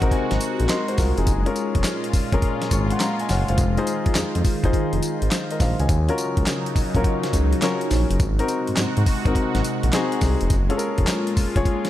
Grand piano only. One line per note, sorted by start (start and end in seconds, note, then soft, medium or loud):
0.00 0.02 C4 medium
0.00 0.53 C4 medium
0.00 0.02 D#4 medium
0.00 0.54 D#4 medium
0.00 0.03 F#4 medium
0.00 0.54 F#4 medium
0.00 0.03 A#4 medium
0.00 0.54 A#4 medium
0.00 1.28 F#5 medium
0.12 0.65 G#5 medium
0.70 0.88 A#4 medium
0.70 0.88 D#5 medium
0.70 1.23 C6 medium
0.89 0.98 F#4 medium
0.89 0.98 C5 medium
0.99 1.17 F4 medium
0.99 1.17 A#4 medium
1.18 1.46 D#4 medium
1.18 1.45 G#4 medium
1.46 2.08 C#4 medium
1.46 2.08 F4 medium
1.46 2.08 G#4 medium
1.46 2.08 A#4 loud
2.33 2.84 C#4 medium
2.33 2.84 F4 medium
2.33 2.85 G#4 medium
2.33 2.85 A#4 medium
2.72 2.90 G#5 medium
2.72 2.90 C#6 medium
2.92 3.01 F#5 medium
2.92 3.00 C6 medium
3.01 3.19 F5 medium
3.01 3.19 A#5 medium
3.21 3.29 D#5 medium
3.21 3.29 G#5 medium
3.30 3.48 C#5 medium
3.30 3.48 F#5 medium
3.49 3.76 C5 medium
3.49 3.76 F5 medium
3.78 4.39 D#4 medium
3.78 4.39 F4 medium
3.78 4.39 G#4 medium
3.78 4.40 C5 medium
4.64 5.15 D#4 medium
4.64 5.15 F4 medium
4.64 5.16 G#4 medium
4.64 5.16 C5 medium
5.51 5.60 A#4 medium
5.51 5.60 D#5 medium
5.61 5.79 C5 medium
5.61 5.79 F5 medium
5.80 6.07 D#5 medium
5.80 6.07 G#5 medium
6.09 6.70 C#4 medium
6.09 6.70 F4 medium
6.09 6.70 F#4 medium
6.09 6.71 A#4 medium
6.95 7.46 C#4 medium
6.95 7.46 F4 medium
6.95 7.47 F#4 medium
6.95 7.47 A#4 medium
7.62 8.17 C#4 medium
7.62 8.17 F4 medium
7.62 8.17 F#4 medium
7.62 8.17 A#4 loud
8.39 9.00 C4 medium
8.39 9.01 D#4 medium
8.39 9.01 F#4 medium
8.39 9.01 A#4 loud
9.25 9.77 C4 medium
9.25 9.77 D#4 medium
9.25 9.77 F#4 medium
9.25 9.77 A#4 medium
9.93 10.47 C4 medium
9.93 10.48 D#4 medium
9.93 10.48 F#4 medium
9.93 10.48 G#4 loud
10.70 11.31 C#4 medium
10.70 11.31 F4 medium
10.70 11.31 G#4 medium
10.70 10.74 A4 medium
10.77 11.35 A#4 medium
11.56 11.90 C#4 medium
11.56 11.90 F4 medium
11.56 11.90 G#4 medium
11.56 11.90 C#5 medium